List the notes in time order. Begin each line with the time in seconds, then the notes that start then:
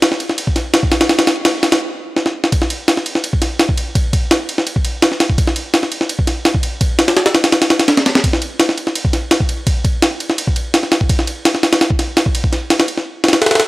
0.02 snare, ride
0.12 snare
0.20 ride
0.29 snare
0.38 ride
0.47 kick
0.56 snare, ride
0.74 snare, ride
0.83 kick
0.92 snare, ride
1.01 snare, ride
1.09 snare, ride
1.19 snare, ride
1.27 snare, ride
1.45 snare, ride
1.63 snare, ride
1.72 snare, ride
2.16 snare
2.26 snare
2.44 snare
2.52 kick, ride
2.62 snare
2.70 ride
2.88 snare, ride
2.97 snare
3.06 ride
3.15 snare
3.24 ride
3.33 kick
3.42 snare, ride
3.59 snare, ride
3.69 kick
3.77 ride
3.95 kick, ride
4.13 kick, ride
4.31 snare, ride
4.49 ride
4.58 snare
4.67 ride
4.76 kick
4.85 ride
5.02 snare, ride
5.12 snare
5.20 snare, ride
5.30 kick
5.38 kick, ride
5.47 snare
5.56 ride
5.74 snare, ride
5.83 snare
5.92 ride
6.01 snare
6.09 ride
6.19 kick
6.27 snare, ride
6.45 snare, ride
6.54 kick
6.63 ride
6.81 kick, ride
6.99 snare, ride
7.08 snare, ride
7.17 snare, ride
7.26 snare, ride
7.35 snare, ride
7.44 snare, ride
7.52 snare, ride
7.62 snare, ride
7.70 snare, ride
7.80 snare, ride
7.88 snare, ride
7.97 snare, ride
8.06 snare, ride
8.15 snare, ride
8.24 kick, ride
8.33 snare
8.42 ride
8.60 snare, ride
8.69 snare
8.78 ride
8.87 snare
8.95 ride
9.05 kick
9.13 snare, ride
9.31 snare, ride
9.40 kick
9.49 ride
9.67 kick, ride
9.85 kick, ride
10.02 snare, ride
10.20 ride
10.30 snare
10.38 ride
10.47 kick
10.56 ride
10.74 snare, ride
10.83 snare
10.92 snare, ride
11.01 kick
11.09 kick, ride
11.19 snare
11.27 ride
11.45 snare, ride
11.55 snare
11.63 snare, ride
11.73 snare, ride
11.81 snare, ride
11.90 kick
11.99 snare, ride
12.17 snare, ride
12.26 kick
12.35 ride
12.44 kick
12.53 snare, ride
12.70 snare, ride
12.80 snare, ride
12.88 ride
12.97 snare
13.24 snare, ride
13.28 snare, ride
13.33 snare, ride
13.42 snare, ride
13.46 snare, ride
13.51 snare, ride
13.55 snare, ride
13.60 snare, ride